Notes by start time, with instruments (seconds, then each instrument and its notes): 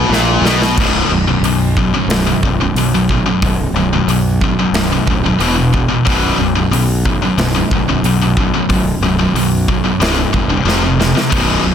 Already playing: distorted electric guitar B2
0.09 fingered electric bass A#1
0.13 distorted electric guitar A#2, snare
0.41 fingered electric bass B1, snare
0.46 distorted electric guitar B2
0.62 snare
0.77 fingered electric bass B0, distorted electric guitar B1 F#2 B2, kick, crash
1.09 fingered electric bass B0, distorted electric guitar B1 F#2
1.27 distorted electric guitar B1 F#2
1.41 fingered electric bass B1, open hi-hat
1.45 distorted electric guitar B1 F#2
1.77 distorted electric guitar B1 F#2, kick
1.94 distorted electric guitar B1 F#2
2.07 fingered electric bass B0, distorted electric guitar B1 F#2, snare, open hi-hat
2.27 distorted electric guitar B1 F#2
2.43 fingered electric bass B0, distorted electric guitar B1 F#2, kick
2.61 distorted electric guitar B1 F#2
2.74 fingered electric bass B1, distorted electric guitar B1 F#2, open hi-hat
2.95 distorted electric guitar B1 F#2
3.09 distorted electric guitar B1 F#2, kick
3.26 distorted electric guitar B1 F#2
3.42 fingered electric bass B0, distorted electric guitar B1 F#2, kick, open hi-hat
3.73 fingered electric bass B0, distorted electric guitar B1 F#2
3.93 distorted electric guitar B1 F#2
4.07 fingered electric bass B1, distorted electric guitar B1 F#2, open hi-hat
4.41 distorted electric guitar B1 F#2, kick
4.59 distorted electric guitar B1 F#2
4.73 fingered electric bass B0, distorted electric guitar B1, snare, open hi-hat
4.77 distorted electric guitar F#2
4.93 distorted electric guitar B1 F#2
5.07 fingered electric bass D1, distorted electric guitar B1 F#2, kick
5.26 distorted electric guitar B1 F#2
5.39 fingered electric bass E1, distorted electric guitar E2 B2 E3, open hi-hat
5.56 distorted electric guitar E2 B2
5.74 distorted electric guitar E2 B2, kick
5.89 distorted electric guitar E2 B2
6.05 fingered electric bass B0, distorted electric guitar B1 F#2 B2, kick, open hi-hat
6.38 fingered electric bass B0, distorted electric guitar B1 F#2
6.55 distorted electric guitar B1 F#2
6.71 fingered electric bass B1, distorted electric guitar B1 F#2, open hi-hat
7.05 distorted electric guitar B1 F#2, kick
7.22 distorted electric guitar B1 F#2
7.37 fingered electric bass B0, distorted electric guitar B1 F#2, snare, open hi-hat
7.55 distorted electric guitar B1 F#2
7.71 fingered electric bass B0, distorted electric guitar B1 F#2, kick
7.89 distorted electric guitar B1 F#2
8.03 fingered electric bass B1, distorted electric guitar B1 F#2, open hi-hat
8.22 distorted electric guitar B1 F#2
8.37 distorted electric guitar B1 F#2, kick
8.54 distorted electric guitar B1 F#2
8.69 fingered electric bass B0, distorted electric guitar B1 F#2, kick, open hi-hat
9.01 fingered electric bass B0, distorted electric guitar B1 F#2
9.19 distorted electric guitar B1 F#2
9.34 fingered electric bass B1, distorted electric guitar B1 F#2, open hi-hat
9.68 distorted electric guitar B1 F#2, kick
9.84 distorted electric guitar B1 F#2
10.00 fingered electric bass C1, distorted electric guitar C2 G2 C3, snare, open hi-hat
10.18 distorted electric guitar C2 G2
10.33 fingered electric bass E1, distorted electric guitar C2 G2, kick
10.50 distorted electric guitar C2 G2
10.65 fingered electric bass F1, distorted electric guitar F2 C3 F3, snare
10.84 distorted electric guitar F2 C3
11.00 distorted electric guitar F2 C3, snare
11.15 distorted electric guitar F2 C3, snare
11.30 fingered electric bass B0, distorted electric guitar B1 F#2 B2, kick, open hi-hat, crash
11.63 fingered electric bass B0, distorted electric guitar B1 F#2